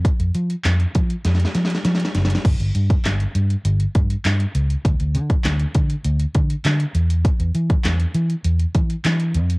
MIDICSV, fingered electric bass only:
0, 0, Header, 1, 2, 480
1, 0, Start_track
1, 0, Tempo, 600000
1, 38, Time_signature, 4, 2, 24, 8
1, 7669, End_track
2, 0, Start_track
2, 0, Title_t, "Fingered electric bass"
2, 0, Program_c, 0, 33
2, 158, Note_on_c, 0, 41, 104
2, 236, Note_off_c, 0, 41, 0
2, 278, Note_on_c, 0, 53, 100
2, 434, Note_off_c, 0, 53, 0
2, 519, Note_on_c, 0, 41, 108
2, 675, Note_off_c, 0, 41, 0
2, 761, Note_on_c, 0, 53, 107
2, 916, Note_off_c, 0, 53, 0
2, 999, Note_on_c, 0, 41, 102
2, 1155, Note_off_c, 0, 41, 0
2, 1239, Note_on_c, 0, 53, 91
2, 1395, Note_off_c, 0, 53, 0
2, 1479, Note_on_c, 0, 53, 99
2, 1634, Note_off_c, 0, 53, 0
2, 1719, Note_on_c, 0, 30, 98
2, 1875, Note_off_c, 0, 30, 0
2, 1959, Note_on_c, 0, 31, 96
2, 2037, Note_off_c, 0, 31, 0
2, 2079, Note_on_c, 0, 31, 100
2, 2157, Note_off_c, 0, 31, 0
2, 2199, Note_on_c, 0, 43, 97
2, 2355, Note_off_c, 0, 43, 0
2, 2440, Note_on_c, 0, 31, 106
2, 2595, Note_off_c, 0, 31, 0
2, 2679, Note_on_c, 0, 43, 99
2, 2834, Note_off_c, 0, 43, 0
2, 2918, Note_on_c, 0, 31, 106
2, 3074, Note_off_c, 0, 31, 0
2, 3160, Note_on_c, 0, 43, 90
2, 3315, Note_off_c, 0, 43, 0
2, 3399, Note_on_c, 0, 43, 99
2, 3554, Note_off_c, 0, 43, 0
2, 3638, Note_on_c, 0, 37, 101
2, 3794, Note_off_c, 0, 37, 0
2, 3879, Note_on_c, 0, 38, 112
2, 3956, Note_off_c, 0, 38, 0
2, 3998, Note_on_c, 0, 38, 99
2, 4118, Note_on_c, 0, 50, 106
2, 4130, Note_off_c, 0, 38, 0
2, 4274, Note_off_c, 0, 50, 0
2, 4357, Note_on_c, 0, 38, 116
2, 4513, Note_off_c, 0, 38, 0
2, 4600, Note_on_c, 0, 50, 103
2, 4756, Note_off_c, 0, 50, 0
2, 4838, Note_on_c, 0, 38, 114
2, 4994, Note_off_c, 0, 38, 0
2, 5079, Note_on_c, 0, 50, 100
2, 5235, Note_off_c, 0, 50, 0
2, 5318, Note_on_c, 0, 50, 97
2, 5474, Note_off_c, 0, 50, 0
2, 5557, Note_on_c, 0, 40, 99
2, 5792, Note_off_c, 0, 40, 0
2, 5918, Note_on_c, 0, 40, 101
2, 5996, Note_off_c, 0, 40, 0
2, 6037, Note_on_c, 0, 52, 108
2, 6193, Note_off_c, 0, 52, 0
2, 6277, Note_on_c, 0, 40, 111
2, 6433, Note_off_c, 0, 40, 0
2, 6518, Note_on_c, 0, 52, 110
2, 6674, Note_off_c, 0, 52, 0
2, 6757, Note_on_c, 0, 40, 104
2, 6914, Note_off_c, 0, 40, 0
2, 6999, Note_on_c, 0, 52, 97
2, 7155, Note_off_c, 0, 52, 0
2, 7238, Note_on_c, 0, 52, 111
2, 7478, Note_on_c, 0, 41, 101
2, 7490, Note_off_c, 0, 52, 0
2, 7669, Note_off_c, 0, 41, 0
2, 7669, End_track
0, 0, End_of_file